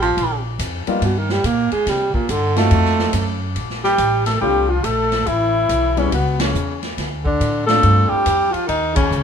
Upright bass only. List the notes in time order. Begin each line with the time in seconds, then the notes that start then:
Already playing: A1
0.17 A#1
0.59 F2
0.87 muted upright bass stroke
1.01 G2
1.44 A#2
1.72 muted upright bass stroke
1.86 C3
2.14 muted upright bass stroke
2.28 G2
2.71 F2
3.13 F#2
3.55 A#1
3.98 A1
4.41 C2
4.84 A#1
5.27 A1
5.69 B1
6.12 C#2
6.54 E2
6.97 D2
7.40 A2
7.83 G2
8.10 muted upright bass stroke
8.26 F2
8.54 muted upright bass stroke
8.68 D#2
9.11 C#2